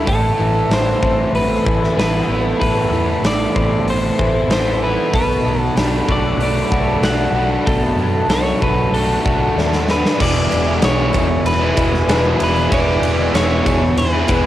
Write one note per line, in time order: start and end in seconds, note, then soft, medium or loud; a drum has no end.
0.00 1.02 A3 medium
0.00 2.32 A3 medium
0.00 3.24 A3 medium
0.00 1.64 E4 medium
0.00 10.15 A4 medium
0.00 5.11 E5 medium
0.06 0.30 A1 medium
0.06 1.66 A2 medium
0.06 0.38 E3 medium
0.06 0.73 A4 medium
0.06 5.10 A5 medium
0.06 10.16 B5 medium
0.06 kick loud
0.06 open hi-hat medium
0.39 0.62 A1 medium
0.39 1.65 E3 medium
0.39 0.70 E3 medium
0.70 0.93 A1 medium
0.70 2.30 E3 medium
0.70 1.35 C5 medium
0.70 snare loud
0.70 open hi-hat soft
1.01 1.26 A1 medium
1.01 1.96 E3 medium
1.01 2.61 C4 medium
1.01 kick medium
1.32 1.56 A1 medium
1.32 1.96 B3 medium
1.32 1.98 B4 medium
1.32 open hi-hat medium
1.65 1.89 A1 medium
1.65 1.95 E3 medium
1.65 2.27 E4 medium
1.65 kick medium
1.84 snare soft
1.96 2.20 A1 medium
1.96 2.59 E3 medium
1.96 2.91 E3 medium
1.96 3.58 B3 medium
1.96 2.43 B4 medium
1.96 snare loud
1.96 open hi-hat medium
2.28 2.51 A1 medium
2.28 4.82 B3 medium
2.28 3.87 E4 medium
2.60 2.84 A1 medium
2.60 4.19 A2 medium
2.60 2.92 E3 medium
2.60 3.26 B4 medium
2.60 kick medium
2.60 open hi-hat medium
2.90 3.14 E2 medium
2.90 3.22 E3 medium
2.90 4.18 E3 medium
3.21 3.45 A1 medium
3.21 4.82 E3 medium
3.21 snare loud
3.21 open hi-hat medium
3.27 3.90 D5 loud
3.55 3.79 A1 medium
3.55 4.49 E3 medium
3.55 5.14 C4 medium
3.55 kick medium
3.84 4.09 A1 medium
3.84 4.51 B3 medium
3.84 open hi-hat medium
3.90 4.51 C5 medium
4.19 4.43 A1 medium
4.19 4.50 E3 medium
4.19 4.81 E4 medium
4.19 kick medium
4.48 4.95 A1 medium
4.48 5.14 E3 medium
4.48 6.13 B3 medium
4.48 snare loud
4.48 open hi-hat medium
4.52 4.83 C5 loud
4.82 5.75 B3 medium
4.82 5.14 E4 medium
4.82 5.14 B4 medium
5.14 5.37 B1 loud
5.14 6.73 B2 medium
5.14 5.44 A3 medium
5.14 5.60 B4 medium
5.14 10.16 F#5 medium
5.14 10.16 A5 medium
5.14 kick loud
5.14 open hi-hat medium
5.45 5.68 B1 medium
5.45 5.77 F#3 medium
5.45 6.70 A3 medium
5.60 5.74 A4 medium
5.75 6.00 B1 medium
5.75 7.36 F#3 medium
5.75 6.72 D4 medium
5.75 6.39 D4 medium
5.75 snare loud
5.75 open hi-hat medium
6.08 6.32 B1 medium
6.08 7.02 F#3 medium
6.08 7.68 A3 medium
6.08 7.67 F#4 medium
6.08 6.41 D5 medium
6.08 kick medium
6.37 6.62 B1 medium
6.37 7.98 A3 medium
6.37 7.35 D4 medium
6.37 open hi-hat medium
6.41 7.02 D4 medium
6.41 7.07 D5 medium
6.71 6.95 B1 medium
6.71 7.03 A3 medium
6.71 7.33 D4 medium
6.71 7.33 F#4 medium
6.71 kick medium
7.01 7.25 B1 medium
7.01 7.98 F#3 medium
7.01 7.66 A3 medium
7.01 8.62 D4 medium
7.01 7.48 F#5 loud
7.01 snare loud
7.01 open hi-hat soft
7.32 7.56 B1 medium
7.32 8.28 D4 medium
7.32 8.93 F#4 medium
7.36 8.30 D4 medium
7.66 7.90 B1 loud
7.66 9.25 B2 medium
7.66 7.98 A3 medium
7.66 8.32 A4 medium
7.66 kick loud
7.66 open hi-hat soft
7.96 8.20 F#2 medium
7.96 8.29 F#3 medium
7.96 9.23 A3 medium
8.27 8.52 B1 medium
8.27 9.88 F#3 medium
8.27 9.24 D4 medium
8.27 8.93 D4 medium
8.27 8.62 C#5 medium
8.27 snare loud
8.27 open hi-hat medium
8.62 8.85 B1 medium
8.62 9.57 F#3 medium
8.62 10.20 A3 medium
8.62 10.20 F#4 medium
8.62 8.95 B4 medium
8.62 kick medium
8.92 9.16 B1 medium
8.92 10.20 A3 medium
8.92 9.56 D4 medium
8.92 9.88 D4 medium
8.92 9.84 A4 medium
8.92 open hi-hat medium
9.24 9.49 B1 medium
9.24 9.56 A3 medium
9.24 9.88 D4 medium
9.24 9.87 F#4 medium
9.24 kick medium
9.56 10.02 D#2 medium
9.56 10.20 F#3 medium
9.56 10.20 A3 medium
9.56 10.20 D4 medium
9.56 snare medium
9.73 snare medium
9.89 10.20 D4 medium
9.89 10.20 F#4 medium
9.89 10.21 B4 medium
9.89 snare medium
10.06 snare medium
10.20 10.47 E1 medium
10.20 10.82 E2 medium
10.20 10.81 B2 medium
10.20 11.46 E3 medium
10.20 10.51 E3 loud
10.20 10.52 G#3 medium
10.20 10.52 D4 medium
10.20 10.53 E4 loud
10.20 14.46 B4 medium
10.20 10.84 D5 medium
10.20 14.46 E5 medium
10.20 14.46 G#5 medium
10.20 kick loud
10.20 crash loud
10.20 tambourine soft
10.51 10.79 E1 medium
10.51 10.69 E3 medium
10.51 10.68 G#3 medium
10.51 11.76 B3 medium
10.51 10.68 D4 medium
10.51 10.68 E4 medium
10.51 ride medium
10.51 tambourine medium
10.68 10.83 E3 medium
10.68 10.82 G#3 medium
10.68 10.83 D4 medium
10.68 10.84 E4 medium
10.68 tambourine soft
10.82 11.10 B1 medium
10.82 11.64 E2 medium
10.82 11.45 B2 medium
10.82 11.14 E3 medium
10.82 11.14 G#3 loud
10.82 11.15 D4 medium
10.82 11.16 E4 loud
10.82 12.39 G#4 medium
10.82 11.46 C#5 medium
10.82 snare loud
10.82 ride loud
10.82 tambourine medium
10.98 tambourine soft
11.13 11.42 E1 medium
11.13 11.29 E3 medium
11.13 11.29 G#3 medium
11.13 12.06 D4 medium
11.13 11.28 D4 medium
11.13 11.28 E4 medium
11.13 kick medium
11.13 ride medium
11.13 tambourine medium
11.29 muted overdriven electric guitar stroke medium
11.45 11.72 E1 loud
11.45 12.70 E3 medium
11.45 12.42 B4 medium
11.45 ride loud
11.60 11.75 E3 medium
11.60 11.77 G#3 medium
11.60 11.76 D4 medium
11.60 11.77 E4 medium
11.76 12.04 E1 medium
11.76 12.05 E2 medium
11.76 12.07 B2 medium
11.76 11.92 E3 medium
11.76 11.93 G#3 medium
11.76 13.01 B3 medium
11.76 11.92 D4 medium
11.76 11.92 E4 medium
11.76 kick medium
11.76 ride medium
11.76 tambourine medium
11.93 muted overdriven electric guitar stroke soft
11.93 snare soft
11.93 tambourine soft
12.07 12.35 E1 loud
12.07 12.72 E2 medium
12.07 12.72 B2 loud
12.07 12.56 E3 medium
12.07 12.56 G#3 loud
12.07 13.63 D4 medium
12.07 12.54 D4 loud
12.07 12.54 E4 medium
12.07 snare loud
12.07 ride loud
12.07 tambourine medium
12.25 12.39 E3 medium
12.25 12.40 G#3 medium
12.25 12.41 D4 medium
12.25 12.41 E4 medium
12.39 12.67 E1 medium
12.39 12.72 E3 medium
12.39 12.72 G#3 medium
12.39 12.72 D4 medium
12.39 12.72 E4 loud
12.39 13.33 G#4 medium
12.39 ride medium
12.44 12.73 B4 medium
12.55 12.72 E3 medium
12.55 12.73 G#3 medium
12.55 12.73 D4 medium
12.55 12.73 E4 medium
12.55 tambourine medium
12.71 12.98 E1 loud
12.71 13.33 E2 medium
12.71 13.33 B2 medium
12.71 13.95 E3 medium
12.71 13.01 E3 loud
12.71 13.03 G#3 medium
12.71 13.02 D4 loud
12.71 13.03 E4 loud
12.71 13.35 D5 medium
12.71 kick loud
12.71 ride loud
12.71 tambourine soft
12.89 tambourine soft
13.01 13.29 E1 medium
13.01 13.20 E3 medium
13.01 13.19 G#3 medium
13.01 14.28 B3 medium
13.01 13.18 D4 medium
13.01 13.18 E4 medium
13.01 ride medium
13.01 tambourine medium
13.19 13.34 E3 medium
13.19 13.35 G#3 medium
13.19 13.34 D4 medium
13.19 13.34 E4 medium
13.19 tambourine soft
13.33 13.61 E1 medium
13.33 13.97 E2 medium
13.33 13.97 B2 medium
13.33 13.65 E3 medium
13.33 13.66 G#3 medium
13.33 13.66 D4 medium
13.33 13.66 E4 loud
13.33 14.46 G#4 medium
13.33 13.98 C#5 medium
13.33 snare loud
13.33 ride loud
13.33 tambourine medium
13.65 13.93 E1 medium
13.65 13.82 E3 medium
13.65 13.81 G#3 medium
13.65 14.46 D4 medium
13.65 13.81 D4 medium
13.65 13.81 E4 medium
13.65 kick medium
13.65 ride medium
13.65 tambourine medium
13.82 muted overdriven electric guitar stroke medium
13.96 14.23 E2 loud
13.96 14.46 E3 medium
13.96 14.46 B4 medium
13.96 ride loud
14.13 14.28 E3 medium
14.13 14.28 G#3 medium
14.13 14.29 D4 medium
14.13 14.29 E4 medium
14.28 14.46 E1 medium
14.28 14.46 E2 medium
14.28 14.46 B2 medium
14.28 14.44 E3 medium
14.28 14.44 G#3 medium
14.28 14.46 B3 medium
14.28 14.44 D4 medium
14.28 14.44 E4 medium
14.28 kick loud
14.28 ride medium
14.28 tambourine medium